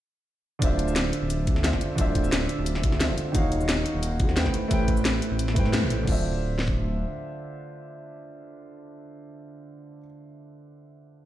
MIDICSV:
0, 0, Header, 1, 4, 480
1, 0, Start_track
1, 0, Tempo, 340909
1, 873, Time_signature, 4, 2, 24, 8
1, 15846, End_track
2, 0, Start_track
2, 0, Title_t, "Grand piano"
2, 0, Program_c, 0, 0
2, 831, Note_on_c, 0, 50, 97
2, 852, Note_on_c, 0, 62, 89
2, 872, Note_on_c, 0, 65, 88
2, 892, Note_on_c, 0, 72, 86
2, 914, Note_on_c, 0, 76, 104
2, 1127, Control_c, 0, 64, 127
2, 2265, Note_off_c, 0, 50, 0
2, 2275, Note_off_c, 0, 62, 0
2, 2285, Note_off_c, 0, 65, 0
2, 2294, Note_on_c, 0, 50, 75
2, 2295, Note_off_c, 0, 72, 0
2, 2304, Note_on_c, 0, 62, 70
2, 2306, Note_off_c, 0, 76, 0
2, 2314, Note_on_c, 0, 65, 70
2, 2325, Note_on_c, 0, 72, 69
2, 2335, Note_on_c, 0, 76, 85
2, 2729, Note_off_c, 0, 50, 0
2, 2750, Note_off_c, 0, 62, 0
2, 2750, Note_on_c, 0, 50, 100
2, 2766, Note_off_c, 0, 65, 0
2, 2771, Note_on_c, 0, 62, 88
2, 2772, Note_off_c, 0, 72, 0
2, 2777, Note_off_c, 0, 76, 0
2, 2792, Note_on_c, 0, 65, 89
2, 2812, Note_on_c, 0, 72, 92
2, 2834, Note_on_c, 0, 76, 112
2, 4184, Note_off_c, 0, 50, 0
2, 4195, Note_off_c, 0, 62, 0
2, 4205, Note_off_c, 0, 65, 0
2, 4212, Note_on_c, 0, 50, 76
2, 4215, Note_off_c, 0, 72, 0
2, 4222, Note_on_c, 0, 62, 70
2, 4226, Note_off_c, 0, 76, 0
2, 4233, Note_on_c, 0, 65, 71
2, 4244, Note_on_c, 0, 72, 69
2, 4254, Note_on_c, 0, 76, 83
2, 4672, Note_on_c, 0, 51, 96
2, 4675, Note_off_c, 0, 50, 0
2, 4680, Note_off_c, 0, 62, 0
2, 4686, Note_off_c, 0, 65, 0
2, 4691, Note_off_c, 0, 72, 0
2, 4694, Note_on_c, 0, 63, 91
2, 4696, Note_off_c, 0, 76, 0
2, 4714, Note_on_c, 0, 66, 89
2, 4729, Control_c, 0, 64, 0
2, 4735, Note_on_c, 0, 73, 90
2, 4755, Note_on_c, 0, 77, 107
2, 4989, Control_c, 0, 64, 127
2, 6105, Note_off_c, 0, 51, 0
2, 6116, Note_off_c, 0, 63, 0
2, 6126, Note_off_c, 0, 66, 0
2, 6132, Note_on_c, 0, 57, 79
2, 6137, Note_off_c, 0, 73, 0
2, 6142, Note_on_c, 0, 64, 70
2, 6147, Note_off_c, 0, 77, 0
2, 6153, Note_on_c, 0, 71, 69
2, 6164, Note_on_c, 0, 72, 72
2, 6174, Note_on_c, 0, 79, 84
2, 6410, Control_c, 0, 64, 0
2, 6567, Note_off_c, 0, 57, 0
2, 6588, Note_off_c, 0, 64, 0
2, 6588, Note_on_c, 0, 57, 99
2, 6606, Note_off_c, 0, 71, 0
2, 6609, Note_on_c, 0, 64, 88
2, 6611, Note_off_c, 0, 72, 0
2, 6616, Note_off_c, 0, 79, 0
2, 6624, Control_c, 0, 64, 127
2, 6631, Note_on_c, 0, 71, 89
2, 6653, Note_on_c, 0, 72, 88
2, 6671, Note_on_c, 0, 79, 110
2, 7770, Note_off_c, 0, 57, 0
2, 7790, Note_off_c, 0, 64, 0
2, 7791, Note_on_c, 0, 57, 92
2, 7809, Note_off_c, 0, 71, 0
2, 7811, Note_on_c, 0, 64, 85
2, 7820, Note_off_c, 0, 72, 0
2, 7829, Note_off_c, 0, 79, 0
2, 7834, Note_on_c, 0, 71, 84
2, 7854, Note_on_c, 0, 72, 85
2, 7875, Note_on_c, 0, 79, 105
2, 8491, Note_on_c, 0, 50, 86
2, 8505, Note_off_c, 0, 57, 0
2, 8515, Note_off_c, 0, 64, 0
2, 8521, Note_on_c, 0, 62, 76
2, 8526, Note_off_c, 0, 71, 0
2, 8536, Note_off_c, 0, 72, 0
2, 8547, Note_off_c, 0, 79, 0
2, 8553, Note_on_c, 0, 65, 78
2, 8569, Control_c, 0, 64, 0
2, 8584, Note_on_c, 0, 72, 77
2, 8615, Note_on_c, 0, 76, 94
2, 8816, Control_c, 0, 64, 127
2, 14014, Note_off_c, 0, 50, 0
2, 14044, Note_off_c, 0, 62, 0
2, 14077, Note_off_c, 0, 65, 0
2, 14107, Note_off_c, 0, 72, 0
2, 14138, Note_off_c, 0, 76, 0
2, 15846, End_track
3, 0, Start_track
3, 0, Title_t, "Detuned saw bass"
3, 0, Program_c, 1, 39
3, 874, Note_on_c, 1, 26, 101
3, 1220, Note_off_c, 1, 26, 0
3, 1241, Note_on_c, 1, 26, 99
3, 1575, Note_off_c, 1, 26, 0
3, 1718, Note_on_c, 1, 26, 87
3, 2074, Note_on_c, 1, 38, 85
3, 2095, Note_off_c, 1, 26, 0
3, 2441, Note_on_c, 1, 26, 76
3, 2463, Note_off_c, 1, 38, 0
3, 2542, Note_off_c, 1, 26, 0
3, 2794, Note_on_c, 1, 26, 100
3, 3140, Note_off_c, 1, 26, 0
3, 3161, Note_on_c, 1, 26, 101
3, 3495, Note_off_c, 1, 26, 0
3, 3641, Note_on_c, 1, 26, 90
3, 3994, Note_on_c, 1, 38, 87
3, 4015, Note_off_c, 1, 26, 0
3, 4359, Note_on_c, 1, 26, 78
3, 4380, Note_off_c, 1, 38, 0
3, 4461, Note_off_c, 1, 26, 0
3, 4714, Note_on_c, 1, 27, 99
3, 5060, Note_off_c, 1, 27, 0
3, 5078, Note_on_c, 1, 27, 100
3, 5413, Note_off_c, 1, 27, 0
3, 5556, Note_on_c, 1, 27, 90
3, 5912, Note_on_c, 1, 39, 85
3, 5934, Note_off_c, 1, 27, 0
3, 6280, Note_on_c, 1, 27, 78
3, 6301, Note_off_c, 1, 39, 0
3, 6381, Note_off_c, 1, 27, 0
3, 6633, Note_on_c, 1, 33, 105
3, 6980, Note_off_c, 1, 33, 0
3, 6996, Note_on_c, 1, 33, 100
3, 7333, Note_off_c, 1, 33, 0
3, 7478, Note_on_c, 1, 33, 86
3, 7832, Note_on_c, 1, 45, 87
3, 7853, Note_off_c, 1, 33, 0
3, 8199, Note_on_c, 1, 33, 84
3, 8220, Note_off_c, 1, 45, 0
3, 8534, Note_off_c, 1, 33, 0
3, 8554, Note_on_c, 1, 26, 102
3, 9937, Note_off_c, 1, 26, 0
3, 15846, End_track
4, 0, Start_track
4, 0, Title_t, "Drums"
4, 873, Note_on_c, 9, 36, 119
4, 873, Note_on_c, 9, 42, 96
4, 873, Note_on_c, 9, 69, 49
4, 1013, Note_off_c, 9, 42, 0
4, 1013, Note_off_c, 9, 69, 0
4, 1014, Note_off_c, 9, 36, 0
4, 1112, Note_on_c, 9, 42, 71
4, 1239, Note_on_c, 9, 69, 58
4, 1253, Note_off_c, 9, 42, 0
4, 1351, Note_off_c, 9, 69, 0
4, 1351, Note_on_c, 9, 38, 122
4, 1351, Note_on_c, 9, 42, 97
4, 1351, Note_on_c, 9, 69, 49
4, 1491, Note_off_c, 9, 38, 0
4, 1491, Note_off_c, 9, 42, 0
4, 1491, Note_off_c, 9, 69, 0
4, 1590, Note_on_c, 9, 42, 69
4, 1731, Note_off_c, 9, 42, 0
4, 1831, Note_on_c, 9, 42, 94
4, 1831, Note_on_c, 9, 69, 48
4, 1972, Note_off_c, 9, 42, 0
4, 1972, Note_off_c, 9, 69, 0
4, 2072, Note_on_c, 9, 42, 68
4, 2073, Note_on_c, 9, 36, 106
4, 2198, Note_on_c, 9, 40, 38
4, 2213, Note_off_c, 9, 42, 0
4, 2214, Note_off_c, 9, 36, 0
4, 2311, Note_on_c, 9, 38, 116
4, 2311, Note_on_c, 9, 42, 95
4, 2311, Note_on_c, 9, 69, 50
4, 2339, Note_off_c, 9, 40, 0
4, 2437, Note_on_c, 9, 40, 48
4, 2441, Note_on_c, 9, 36, 62
4, 2452, Note_off_c, 9, 38, 0
4, 2452, Note_off_c, 9, 42, 0
4, 2452, Note_off_c, 9, 69, 0
4, 2550, Note_on_c, 9, 42, 68
4, 2550, Note_on_c, 9, 69, 28
4, 2578, Note_off_c, 9, 40, 0
4, 2582, Note_off_c, 9, 36, 0
4, 2691, Note_off_c, 9, 42, 0
4, 2691, Note_off_c, 9, 69, 0
4, 2789, Note_on_c, 9, 42, 95
4, 2789, Note_on_c, 9, 69, 48
4, 2794, Note_on_c, 9, 36, 122
4, 2930, Note_off_c, 9, 42, 0
4, 2930, Note_off_c, 9, 69, 0
4, 2935, Note_off_c, 9, 36, 0
4, 3030, Note_on_c, 9, 42, 72
4, 3033, Note_on_c, 9, 36, 65
4, 3156, Note_on_c, 9, 69, 57
4, 3170, Note_off_c, 9, 42, 0
4, 3174, Note_off_c, 9, 36, 0
4, 3271, Note_off_c, 9, 69, 0
4, 3271, Note_on_c, 9, 38, 126
4, 3271, Note_on_c, 9, 42, 92
4, 3271, Note_on_c, 9, 69, 47
4, 3412, Note_off_c, 9, 38, 0
4, 3412, Note_off_c, 9, 42, 0
4, 3412, Note_off_c, 9, 69, 0
4, 3509, Note_on_c, 9, 42, 65
4, 3650, Note_off_c, 9, 42, 0
4, 3749, Note_on_c, 9, 42, 91
4, 3749, Note_on_c, 9, 69, 46
4, 3876, Note_on_c, 9, 40, 55
4, 3890, Note_off_c, 9, 42, 0
4, 3890, Note_off_c, 9, 69, 0
4, 3991, Note_on_c, 9, 42, 69
4, 3993, Note_on_c, 9, 36, 112
4, 4017, Note_off_c, 9, 40, 0
4, 4116, Note_on_c, 9, 40, 38
4, 4131, Note_off_c, 9, 42, 0
4, 4134, Note_off_c, 9, 36, 0
4, 4230, Note_on_c, 9, 38, 124
4, 4230, Note_on_c, 9, 42, 96
4, 4230, Note_on_c, 9, 69, 47
4, 4257, Note_off_c, 9, 40, 0
4, 4371, Note_off_c, 9, 38, 0
4, 4371, Note_off_c, 9, 42, 0
4, 4371, Note_off_c, 9, 69, 0
4, 4472, Note_on_c, 9, 42, 69
4, 4472, Note_on_c, 9, 69, 26
4, 4613, Note_off_c, 9, 42, 0
4, 4613, Note_off_c, 9, 69, 0
4, 4711, Note_on_c, 9, 42, 90
4, 4711, Note_on_c, 9, 69, 48
4, 4713, Note_on_c, 9, 36, 127
4, 4852, Note_off_c, 9, 42, 0
4, 4852, Note_off_c, 9, 69, 0
4, 4854, Note_off_c, 9, 36, 0
4, 4952, Note_on_c, 9, 42, 67
4, 5079, Note_on_c, 9, 69, 56
4, 5093, Note_off_c, 9, 42, 0
4, 5192, Note_off_c, 9, 69, 0
4, 5192, Note_on_c, 9, 38, 127
4, 5192, Note_on_c, 9, 42, 91
4, 5192, Note_on_c, 9, 69, 49
4, 5332, Note_off_c, 9, 38, 0
4, 5332, Note_off_c, 9, 42, 0
4, 5332, Note_off_c, 9, 69, 0
4, 5430, Note_on_c, 9, 42, 64
4, 5571, Note_off_c, 9, 42, 0
4, 5670, Note_on_c, 9, 42, 90
4, 5670, Note_on_c, 9, 69, 47
4, 5811, Note_off_c, 9, 42, 0
4, 5811, Note_off_c, 9, 69, 0
4, 5907, Note_on_c, 9, 42, 67
4, 5912, Note_on_c, 9, 36, 116
4, 6037, Note_on_c, 9, 40, 37
4, 6048, Note_off_c, 9, 42, 0
4, 6053, Note_off_c, 9, 36, 0
4, 6149, Note_on_c, 9, 38, 125
4, 6149, Note_on_c, 9, 42, 87
4, 6149, Note_on_c, 9, 69, 47
4, 6178, Note_off_c, 9, 40, 0
4, 6276, Note_on_c, 9, 40, 49
4, 6280, Note_on_c, 9, 36, 68
4, 6289, Note_off_c, 9, 38, 0
4, 6289, Note_off_c, 9, 42, 0
4, 6289, Note_off_c, 9, 69, 0
4, 6390, Note_on_c, 9, 42, 66
4, 6390, Note_on_c, 9, 69, 25
4, 6417, Note_off_c, 9, 40, 0
4, 6420, Note_off_c, 9, 36, 0
4, 6530, Note_off_c, 9, 42, 0
4, 6530, Note_off_c, 9, 69, 0
4, 6629, Note_on_c, 9, 42, 86
4, 6629, Note_on_c, 9, 69, 50
4, 6632, Note_on_c, 9, 36, 125
4, 6770, Note_off_c, 9, 42, 0
4, 6770, Note_off_c, 9, 69, 0
4, 6773, Note_off_c, 9, 36, 0
4, 6870, Note_on_c, 9, 42, 64
4, 6872, Note_on_c, 9, 36, 66
4, 6997, Note_on_c, 9, 69, 59
4, 7011, Note_off_c, 9, 42, 0
4, 7013, Note_off_c, 9, 36, 0
4, 7112, Note_off_c, 9, 69, 0
4, 7112, Note_on_c, 9, 38, 127
4, 7112, Note_on_c, 9, 42, 90
4, 7112, Note_on_c, 9, 69, 50
4, 7253, Note_off_c, 9, 38, 0
4, 7253, Note_off_c, 9, 42, 0
4, 7253, Note_off_c, 9, 69, 0
4, 7352, Note_on_c, 9, 42, 62
4, 7352, Note_on_c, 9, 69, 26
4, 7493, Note_off_c, 9, 42, 0
4, 7493, Note_off_c, 9, 69, 0
4, 7592, Note_on_c, 9, 42, 89
4, 7592, Note_on_c, 9, 69, 48
4, 7718, Note_on_c, 9, 40, 54
4, 7733, Note_off_c, 9, 42, 0
4, 7733, Note_off_c, 9, 69, 0
4, 7831, Note_on_c, 9, 42, 68
4, 7831, Note_on_c, 9, 69, 28
4, 7832, Note_on_c, 9, 36, 110
4, 7858, Note_off_c, 9, 40, 0
4, 7961, Note_on_c, 9, 40, 34
4, 7972, Note_off_c, 9, 42, 0
4, 7972, Note_off_c, 9, 69, 0
4, 7973, Note_off_c, 9, 36, 0
4, 8073, Note_on_c, 9, 38, 122
4, 8073, Note_on_c, 9, 42, 89
4, 8073, Note_on_c, 9, 69, 49
4, 8101, Note_off_c, 9, 40, 0
4, 8214, Note_off_c, 9, 38, 0
4, 8214, Note_off_c, 9, 42, 0
4, 8214, Note_off_c, 9, 69, 0
4, 8312, Note_on_c, 9, 42, 63
4, 8312, Note_on_c, 9, 69, 27
4, 8453, Note_off_c, 9, 42, 0
4, 8453, Note_off_c, 9, 69, 0
4, 8553, Note_on_c, 9, 36, 111
4, 8554, Note_on_c, 9, 49, 91
4, 8694, Note_off_c, 9, 36, 0
4, 8695, Note_off_c, 9, 49, 0
4, 9274, Note_on_c, 9, 38, 63
4, 9401, Note_on_c, 9, 36, 77
4, 9415, Note_off_c, 9, 38, 0
4, 9542, Note_off_c, 9, 36, 0
4, 15846, End_track
0, 0, End_of_file